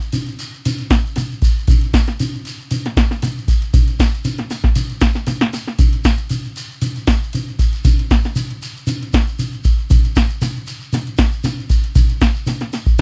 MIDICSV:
0, 0, Header, 1, 3, 480
1, 0, Start_track
1, 0, Tempo, 514139
1, 1567, Time_signature, 4, 2, 24, 8
1, 12148, End_track
2, 0, Start_track
2, 0, Title_t, "Shekere"
2, 4, Note_on_c, 9, 82, 32
2, 97, Note_off_c, 9, 82, 0
2, 123, Note_on_c, 9, 82, 93
2, 216, Note_off_c, 9, 82, 0
2, 256, Note_on_c, 9, 82, 29
2, 350, Note_off_c, 9, 82, 0
2, 370, Note_on_c, 9, 82, 75
2, 463, Note_off_c, 9, 82, 0
2, 503, Note_on_c, 9, 82, 33
2, 596, Note_off_c, 9, 82, 0
2, 615, Note_on_c, 9, 82, 102
2, 709, Note_off_c, 9, 82, 0
2, 740, Note_on_c, 9, 82, 33
2, 834, Note_off_c, 9, 82, 0
2, 850, Note_on_c, 9, 82, 75
2, 943, Note_off_c, 9, 82, 0
2, 984, Note_on_c, 9, 82, 34
2, 1078, Note_off_c, 9, 82, 0
2, 1096, Note_on_c, 9, 82, 96
2, 1189, Note_off_c, 9, 82, 0
2, 1229, Note_on_c, 9, 82, 32
2, 1323, Note_off_c, 9, 82, 0
2, 1339, Note_on_c, 9, 82, 76
2, 1433, Note_off_c, 9, 82, 0
2, 1468, Note_on_c, 9, 82, 35
2, 1561, Note_off_c, 9, 82, 0
2, 1585, Note_on_c, 9, 82, 98
2, 1678, Note_off_c, 9, 82, 0
2, 1710, Note_on_c, 9, 82, 34
2, 1804, Note_off_c, 9, 82, 0
2, 1817, Note_on_c, 9, 82, 75
2, 1911, Note_off_c, 9, 82, 0
2, 1945, Note_on_c, 9, 82, 32
2, 2039, Note_off_c, 9, 82, 0
2, 2056, Note_on_c, 9, 82, 97
2, 2150, Note_off_c, 9, 82, 0
2, 2184, Note_on_c, 9, 82, 31
2, 2278, Note_off_c, 9, 82, 0
2, 2300, Note_on_c, 9, 82, 74
2, 2393, Note_off_c, 9, 82, 0
2, 2427, Note_on_c, 9, 82, 32
2, 2520, Note_off_c, 9, 82, 0
2, 2533, Note_on_c, 9, 82, 102
2, 2627, Note_off_c, 9, 82, 0
2, 2669, Note_on_c, 9, 82, 33
2, 2763, Note_off_c, 9, 82, 0
2, 2776, Note_on_c, 9, 82, 80
2, 2870, Note_off_c, 9, 82, 0
2, 2907, Note_on_c, 9, 82, 32
2, 3000, Note_off_c, 9, 82, 0
2, 3016, Note_on_c, 9, 82, 97
2, 3110, Note_off_c, 9, 82, 0
2, 3148, Note_on_c, 9, 82, 32
2, 3241, Note_off_c, 9, 82, 0
2, 3257, Note_on_c, 9, 82, 71
2, 3350, Note_off_c, 9, 82, 0
2, 3390, Note_on_c, 9, 82, 31
2, 3483, Note_off_c, 9, 82, 0
2, 3491, Note_on_c, 9, 82, 99
2, 3584, Note_off_c, 9, 82, 0
2, 3622, Note_on_c, 9, 82, 31
2, 3715, Note_off_c, 9, 82, 0
2, 3734, Note_on_c, 9, 82, 78
2, 3827, Note_off_c, 9, 82, 0
2, 3864, Note_on_c, 9, 82, 32
2, 3957, Note_off_c, 9, 82, 0
2, 3966, Note_on_c, 9, 82, 93
2, 4060, Note_off_c, 9, 82, 0
2, 4098, Note_on_c, 9, 82, 31
2, 4191, Note_off_c, 9, 82, 0
2, 4207, Note_on_c, 9, 82, 74
2, 4300, Note_off_c, 9, 82, 0
2, 4332, Note_on_c, 9, 82, 31
2, 4426, Note_off_c, 9, 82, 0
2, 4443, Note_on_c, 9, 82, 99
2, 4536, Note_off_c, 9, 82, 0
2, 4574, Note_on_c, 9, 82, 32
2, 4667, Note_off_c, 9, 82, 0
2, 4678, Note_on_c, 9, 82, 76
2, 4771, Note_off_c, 9, 82, 0
2, 4804, Note_on_c, 9, 82, 30
2, 4897, Note_off_c, 9, 82, 0
2, 4922, Note_on_c, 9, 82, 96
2, 5015, Note_off_c, 9, 82, 0
2, 5052, Note_on_c, 9, 82, 30
2, 5146, Note_off_c, 9, 82, 0
2, 5166, Note_on_c, 9, 82, 74
2, 5260, Note_off_c, 9, 82, 0
2, 5300, Note_on_c, 9, 82, 34
2, 5393, Note_off_c, 9, 82, 0
2, 5409, Note_on_c, 9, 82, 93
2, 5502, Note_off_c, 9, 82, 0
2, 5536, Note_on_c, 9, 82, 31
2, 5629, Note_off_c, 9, 82, 0
2, 5644, Note_on_c, 9, 82, 76
2, 5737, Note_off_c, 9, 82, 0
2, 5766, Note_on_c, 9, 82, 32
2, 5859, Note_off_c, 9, 82, 0
2, 5886, Note_on_c, 9, 82, 93
2, 5979, Note_off_c, 9, 82, 0
2, 6018, Note_on_c, 9, 82, 31
2, 6112, Note_off_c, 9, 82, 0
2, 6130, Note_on_c, 9, 82, 78
2, 6223, Note_off_c, 9, 82, 0
2, 6256, Note_on_c, 9, 82, 31
2, 6350, Note_off_c, 9, 82, 0
2, 6366, Note_on_c, 9, 82, 99
2, 6459, Note_off_c, 9, 82, 0
2, 6503, Note_on_c, 9, 82, 31
2, 6596, Note_off_c, 9, 82, 0
2, 6613, Note_on_c, 9, 82, 78
2, 6706, Note_off_c, 9, 82, 0
2, 6746, Note_on_c, 9, 82, 31
2, 6839, Note_off_c, 9, 82, 0
2, 6858, Note_on_c, 9, 82, 97
2, 6951, Note_off_c, 9, 82, 0
2, 6982, Note_on_c, 9, 82, 32
2, 7075, Note_off_c, 9, 82, 0
2, 7093, Note_on_c, 9, 82, 73
2, 7186, Note_off_c, 9, 82, 0
2, 7226, Note_on_c, 9, 82, 35
2, 7319, Note_off_c, 9, 82, 0
2, 7326, Note_on_c, 9, 82, 101
2, 7420, Note_off_c, 9, 82, 0
2, 7455, Note_on_c, 9, 82, 32
2, 7549, Note_off_c, 9, 82, 0
2, 7569, Note_on_c, 9, 82, 75
2, 7662, Note_off_c, 9, 82, 0
2, 7692, Note_on_c, 9, 82, 32
2, 7785, Note_off_c, 9, 82, 0
2, 7802, Note_on_c, 9, 82, 95
2, 7896, Note_off_c, 9, 82, 0
2, 7929, Note_on_c, 9, 82, 30
2, 8022, Note_off_c, 9, 82, 0
2, 8049, Note_on_c, 9, 82, 78
2, 8142, Note_off_c, 9, 82, 0
2, 8182, Note_on_c, 9, 82, 32
2, 8275, Note_off_c, 9, 82, 0
2, 8281, Note_on_c, 9, 82, 98
2, 8374, Note_off_c, 9, 82, 0
2, 8416, Note_on_c, 9, 82, 31
2, 8510, Note_off_c, 9, 82, 0
2, 8524, Note_on_c, 9, 82, 80
2, 8618, Note_off_c, 9, 82, 0
2, 8658, Note_on_c, 9, 82, 34
2, 8751, Note_off_c, 9, 82, 0
2, 8767, Note_on_c, 9, 82, 94
2, 8861, Note_off_c, 9, 82, 0
2, 8891, Note_on_c, 9, 82, 33
2, 8984, Note_off_c, 9, 82, 0
2, 8999, Note_on_c, 9, 82, 73
2, 9092, Note_off_c, 9, 82, 0
2, 9131, Note_on_c, 9, 82, 33
2, 9224, Note_off_c, 9, 82, 0
2, 9244, Note_on_c, 9, 82, 103
2, 9338, Note_off_c, 9, 82, 0
2, 9372, Note_on_c, 9, 82, 32
2, 9465, Note_off_c, 9, 82, 0
2, 9484, Note_on_c, 9, 82, 80
2, 9578, Note_off_c, 9, 82, 0
2, 9611, Note_on_c, 9, 82, 34
2, 9704, Note_off_c, 9, 82, 0
2, 9725, Note_on_c, 9, 82, 97
2, 9818, Note_off_c, 9, 82, 0
2, 9855, Note_on_c, 9, 82, 32
2, 9948, Note_off_c, 9, 82, 0
2, 9960, Note_on_c, 9, 82, 75
2, 10053, Note_off_c, 9, 82, 0
2, 10091, Note_on_c, 9, 82, 32
2, 10184, Note_off_c, 9, 82, 0
2, 10202, Note_on_c, 9, 82, 105
2, 10296, Note_off_c, 9, 82, 0
2, 10332, Note_on_c, 9, 82, 31
2, 10425, Note_off_c, 9, 82, 0
2, 10435, Note_on_c, 9, 82, 80
2, 10528, Note_off_c, 9, 82, 0
2, 10566, Note_on_c, 9, 82, 30
2, 10659, Note_off_c, 9, 82, 0
2, 10680, Note_on_c, 9, 82, 99
2, 10773, Note_off_c, 9, 82, 0
2, 10816, Note_on_c, 9, 82, 33
2, 10910, Note_off_c, 9, 82, 0
2, 10926, Note_on_c, 9, 82, 78
2, 11019, Note_off_c, 9, 82, 0
2, 11050, Note_on_c, 9, 82, 31
2, 11143, Note_off_c, 9, 82, 0
2, 11162, Note_on_c, 9, 82, 96
2, 11256, Note_off_c, 9, 82, 0
2, 11287, Note_on_c, 9, 82, 32
2, 11380, Note_off_c, 9, 82, 0
2, 11400, Note_on_c, 9, 82, 72
2, 11494, Note_off_c, 9, 82, 0
2, 11529, Note_on_c, 9, 82, 34
2, 11622, Note_off_c, 9, 82, 0
2, 11638, Note_on_c, 9, 82, 96
2, 11731, Note_off_c, 9, 82, 0
2, 11771, Note_on_c, 9, 82, 31
2, 11865, Note_off_c, 9, 82, 0
2, 11887, Note_on_c, 9, 82, 75
2, 11980, Note_off_c, 9, 82, 0
2, 12010, Note_on_c, 9, 82, 34
2, 12104, Note_off_c, 9, 82, 0
2, 12148, End_track
3, 0, Start_track
3, 0, Title_t, "Drums"
3, 116, Note_on_c, 9, 42, 76
3, 209, Note_off_c, 9, 42, 0
3, 247, Note_on_c, 9, 42, 35
3, 340, Note_off_c, 9, 42, 0
3, 362, Note_on_c, 9, 42, 53
3, 456, Note_off_c, 9, 42, 0
3, 610, Note_on_c, 9, 42, 76
3, 704, Note_off_c, 9, 42, 0
3, 731, Note_on_c, 9, 42, 34
3, 825, Note_off_c, 9, 42, 0
3, 843, Note_on_c, 9, 36, 73
3, 843, Note_on_c, 9, 42, 54
3, 847, Note_on_c, 9, 38, 82
3, 936, Note_off_c, 9, 42, 0
3, 937, Note_off_c, 9, 36, 0
3, 940, Note_off_c, 9, 38, 0
3, 1080, Note_on_c, 9, 42, 77
3, 1084, Note_on_c, 9, 38, 32
3, 1173, Note_off_c, 9, 42, 0
3, 1177, Note_off_c, 9, 38, 0
3, 1323, Note_on_c, 9, 42, 49
3, 1325, Note_on_c, 9, 36, 74
3, 1416, Note_off_c, 9, 42, 0
3, 1418, Note_off_c, 9, 36, 0
3, 1563, Note_on_c, 9, 42, 69
3, 1566, Note_on_c, 9, 36, 95
3, 1656, Note_off_c, 9, 42, 0
3, 1660, Note_off_c, 9, 36, 0
3, 1692, Note_on_c, 9, 42, 36
3, 1785, Note_off_c, 9, 42, 0
3, 1806, Note_on_c, 9, 36, 79
3, 1806, Note_on_c, 9, 42, 53
3, 1810, Note_on_c, 9, 38, 78
3, 1899, Note_off_c, 9, 36, 0
3, 1900, Note_off_c, 9, 42, 0
3, 1904, Note_off_c, 9, 38, 0
3, 1937, Note_on_c, 9, 42, 34
3, 1940, Note_on_c, 9, 38, 30
3, 2030, Note_off_c, 9, 42, 0
3, 2034, Note_off_c, 9, 38, 0
3, 2049, Note_on_c, 9, 42, 72
3, 2143, Note_off_c, 9, 42, 0
3, 2288, Note_on_c, 9, 42, 55
3, 2381, Note_off_c, 9, 42, 0
3, 2527, Note_on_c, 9, 42, 80
3, 2620, Note_off_c, 9, 42, 0
3, 2665, Note_on_c, 9, 42, 37
3, 2669, Note_on_c, 9, 38, 31
3, 2759, Note_off_c, 9, 42, 0
3, 2762, Note_off_c, 9, 38, 0
3, 2769, Note_on_c, 9, 36, 77
3, 2772, Note_on_c, 9, 42, 59
3, 2776, Note_on_c, 9, 38, 78
3, 2863, Note_off_c, 9, 36, 0
3, 2865, Note_off_c, 9, 42, 0
3, 2869, Note_off_c, 9, 38, 0
3, 2904, Note_on_c, 9, 38, 31
3, 2997, Note_off_c, 9, 38, 0
3, 3009, Note_on_c, 9, 42, 80
3, 3013, Note_on_c, 9, 38, 32
3, 3102, Note_off_c, 9, 42, 0
3, 3106, Note_off_c, 9, 38, 0
3, 3248, Note_on_c, 9, 36, 65
3, 3250, Note_on_c, 9, 42, 58
3, 3341, Note_off_c, 9, 36, 0
3, 3343, Note_off_c, 9, 42, 0
3, 3380, Note_on_c, 9, 42, 35
3, 3473, Note_off_c, 9, 42, 0
3, 3488, Note_on_c, 9, 36, 91
3, 3489, Note_on_c, 9, 42, 74
3, 3581, Note_off_c, 9, 36, 0
3, 3582, Note_off_c, 9, 42, 0
3, 3619, Note_on_c, 9, 42, 42
3, 3713, Note_off_c, 9, 42, 0
3, 3728, Note_on_c, 9, 36, 75
3, 3732, Note_on_c, 9, 42, 57
3, 3736, Note_on_c, 9, 38, 74
3, 3821, Note_off_c, 9, 36, 0
3, 3825, Note_off_c, 9, 42, 0
3, 3829, Note_off_c, 9, 38, 0
3, 3966, Note_on_c, 9, 42, 77
3, 4059, Note_off_c, 9, 42, 0
3, 4092, Note_on_c, 9, 42, 38
3, 4095, Note_on_c, 9, 38, 30
3, 4185, Note_off_c, 9, 42, 0
3, 4189, Note_off_c, 9, 38, 0
3, 4204, Note_on_c, 9, 42, 54
3, 4207, Note_on_c, 9, 38, 31
3, 4297, Note_off_c, 9, 42, 0
3, 4301, Note_off_c, 9, 38, 0
3, 4329, Note_on_c, 9, 38, 29
3, 4330, Note_on_c, 9, 36, 73
3, 4423, Note_off_c, 9, 36, 0
3, 4423, Note_off_c, 9, 38, 0
3, 4439, Note_on_c, 9, 42, 73
3, 4532, Note_off_c, 9, 42, 0
3, 4570, Note_on_c, 9, 42, 37
3, 4664, Note_off_c, 9, 42, 0
3, 4678, Note_on_c, 9, 42, 57
3, 4681, Note_on_c, 9, 36, 73
3, 4681, Note_on_c, 9, 38, 77
3, 4771, Note_off_c, 9, 42, 0
3, 4774, Note_off_c, 9, 36, 0
3, 4775, Note_off_c, 9, 38, 0
3, 4810, Note_on_c, 9, 38, 28
3, 4904, Note_off_c, 9, 38, 0
3, 4915, Note_on_c, 9, 42, 74
3, 4919, Note_on_c, 9, 38, 31
3, 5009, Note_off_c, 9, 42, 0
3, 5012, Note_off_c, 9, 38, 0
3, 5052, Note_on_c, 9, 38, 72
3, 5145, Note_off_c, 9, 38, 0
3, 5163, Note_on_c, 9, 42, 53
3, 5167, Note_on_c, 9, 38, 30
3, 5256, Note_off_c, 9, 42, 0
3, 5260, Note_off_c, 9, 38, 0
3, 5298, Note_on_c, 9, 38, 30
3, 5391, Note_off_c, 9, 38, 0
3, 5401, Note_on_c, 9, 42, 64
3, 5403, Note_on_c, 9, 36, 92
3, 5494, Note_off_c, 9, 42, 0
3, 5497, Note_off_c, 9, 36, 0
3, 5534, Note_on_c, 9, 42, 35
3, 5628, Note_off_c, 9, 42, 0
3, 5644, Note_on_c, 9, 36, 74
3, 5645, Note_on_c, 9, 42, 52
3, 5648, Note_on_c, 9, 38, 78
3, 5738, Note_off_c, 9, 36, 0
3, 5738, Note_off_c, 9, 42, 0
3, 5742, Note_off_c, 9, 38, 0
3, 5771, Note_on_c, 9, 42, 33
3, 5864, Note_off_c, 9, 42, 0
3, 5876, Note_on_c, 9, 42, 68
3, 5970, Note_off_c, 9, 42, 0
3, 6122, Note_on_c, 9, 42, 52
3, 6216, Note_off_c, 9, 42, 0
3, 6362, Note_on_c, 9, 42, 73
3, 6456, Note_off_c, 9, 42, 0
3, 6496, Note_on_c, 9, 42, 35
3, 6590, Note_off_c, 9, 42, 0
3, 6601, Note_on_c, 9, 42, 57
3, 6604, Note_on_c, 9, 36, 71
3, 6605, Note_on_c, 9, 38, 77
3, 6695, Note_off_c, 9, 42, 0
3, 6697, Note_off_c, 9, 36, 0
3, 6698, Note_off_c, 9, 38, 0
3, 6843, Note_on_c, 9, 42, 81
3, 6936, Note_off_c, 9, 42, 0
3, 7085, Note_on_c, 9, 36, 66
3, 7088, Note_on_c, 9, 42, 57
3, 7179, Note_off_c, 9, 36, 0
3, 7181, Note_off_c, 9, 42, 0
3, 7214, Note_on_c, 9, 42, 35
3, 7308, Note_off_c, 9, 42, 0
3, 7326, Note_on_c, 9, 36, 90
3, 7326, Note_on_c, 9, 42, 72
3, 7419, Note_off_c, 9, 36, 0
3, 7420, Note_off_c, 9, 42, 0
3, 7461, Note_on_c, 9, 42, 38
3, 7555, Note_off_c, 9, 42, 0
3, 7568, Note_on_c, 9, 42, 56
3, 7569, Note_on_c, 9, 36, 77
3, 7572, Note_on_c, 9, 38, 72
3, 7662, Note_off_c, 9, 36, 0
3, 7662, Note_off_c, 9, 42, 0
3, 7665, Note_off_c, 9, 38, 0
3, 7704, Note_on_c, 9, 38, 29
3, 7798, Note_off_c, 9, 38, 0
3, 7814, Note_on_c, 9, 42, 75
3, 7908, Note_off_c, 9, 42, 0
3, 7940, Note_on_c, 9, 42, 38
3, 8034, Note_off_c, 9, 42, 0
3, 8051, Note_on_c, 9, 42, 58
3, 8144, Note_off_c, 9, 42, 0
3, 8295, Note_on_c, 9, 42, 85
3, 8388, Note_off_c, 9, 42, 0
3, 8426, Note_on_c, 9, 42, 38
3, 8519, Note_off_c, 9, 42, 0
3, 8529, Note_on_c, 9, 36, 73
3, 8533, Note_on_c, 9, 42, 60
3, 8536, Note_on_c, 9, 38, 80
3, 8622, Note_off_c, 9, 36, 0
3, 8626, Note_off_c, 9, 42, 0
3, 8630, Note_off_c, 9, 38, 0
3, 8771, Note_on_c, 9, 42, 77
3, 8864, Note_off_c, 9, 42, 0
3, 9007, Note_on_c, 9, 36, 74
3, 9009, Note_on_c, 9, 42, 56
3, 9100, Note_off_c, 9, 36, 0
3, 9102, Note_off_c, 9, 42, 0
3, 9249, Note_on_c, 9, 36, 97
3, 9250, Note_on_c, 9, 42, 69
3, 9342, Note_off_c, 9, 36, 0
3, 9344, Note_off_c, 9, 42, 0
3, 9381, Note_on_c, 9, 42, 36
3, 9474, Note_off_c, 9, 42, 0
3, 9488, Note_on_c, 9, 36, 75
3, 9489, Note_on_c, 9, 42, 51
3, 9493, Note_on_c, 9, 38, 74
3, 9581, Note_off_c, 9, 36, 0
3, 9582, Note_off_c, 9, 42, 0
3, 9586, Note_off_c, 9, 38, 0
3, 9620, Note_on_c, 9, 42, 32
3, 9713, Note_off_c, 9, 42, 0
3, 9724, Note_on_c, 9, 42, 72
3, 9728, Note_on_c, 9, 38, 31
3, 9817, Note_off_c, 9, 42, 0
3, 9821, Note_off_c, 9, 38, 0
3, 9971, Note_on_c, 9, 42, 52
3, 10064, Note_off_c, 9, 42, 0
3, 10211, Note_on_c, 9, 42, 68
3, 10215, Note_on_c, 9, 38, 33
3, 10304, Note_off_c, 9, 42, 0
3, 10308, Note_off_c, 9, 38, 0
3, 10334, Note_on_c, 9, 42, 37
3, 10428, Note_off_c, 9, 42, 0
3, 10440, Note_on_c, 9, 42, 55
3, 10442, Note_on_c, 9, 36, 76
3, 10443, Note_on_c, 9, 38, 77
3, 10533, Note_off_c, 9, 42, 0
3, 10535, Note_off_c, 9, 36, 0
3, 10537, Note_off_c, 9, 38, 0
3, 10685, Note_on_c, 9, 42, 76
3, 10689, Note_on_c, 9, 38, 32
3, 10778, Note_off_c, 9, 42, 0
3, 10782, Note_off_c, 9, 38, 0
3, 10918, Note_on_c, 9, 42, 53
3, 10921, Note_on_c, 9, 36, 71
3, 11012, Note_off_c, 9, 42, 0
3, 11014, Note_off_c, 9, 36, 0
3, 11051, Note_on_c, 9, 42, 36
3, 11145, Note_off_c, 9, 42, 0
3, 11161, Note_on_c, 9, 36, 96
3, 11161, Note_on_c, 9, 42, 67
3, 11254, Note_off_c, 9, 36, 0
3, 11254, Note_off_c, 9, 42, 0
3, 11293, Note_on_c, 9, 42, 39
3, 11386, Note_off_c, 9, 42, 0
3, 11401, Note_on_c, 9, 42, 54
3, 11402, Note_on_c, 9, 36, 76
3, 11404, Note_on_c, 9, 38, 78
3, 11494, Note_off_c, 9, 42, 0
3, 11495, Note_off_c, 9, 36, 0
3, 11498, Note_off_c, 9, 38, 0
3, 11645, Note_on_c, 9, 42, 76
3, 11648, Note_on_c, 9, 38, 31
3, 11738, Note_off_c, 9, 42, 0
3, 11742, Note_off_c, 9, 38, 0
3, 11770, Note_on_c, 9, 42, 39
3, 11773, Note_on_c, 9, 38, 31
3, 11863, Note_off_c, 9, 42, 0
3, 11867, Note_off_c, 9, 38, 0
3, 11884, Note_on_c, 9, 42, 54
3, 11888, Note_on_c, 9, 38, 29
3, 11978, Note_off_c, 9, 42, 0
3, 11981, Note_off_c, 9, 38, 0
3, 12008, Note_on_c, 9, 36, 70
3, 12102, Note_off_c, 9, 36, 0
3, 12148, End_track
0, 0, End_of_file